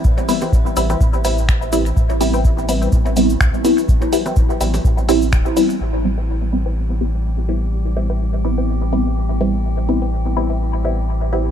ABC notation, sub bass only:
X:1
M:4/4
L:1/8
Q:"Swing 16ths" 1/4=125
K:Ador
V:1 name="Sub bass" clef=bass
z3 A,,, A,,,4 | A,,,4 A,,,2 C,, z | z3 A,,, A,,,2 E,,, z | A,,,8- |
A,,,8- | A,,,8 |]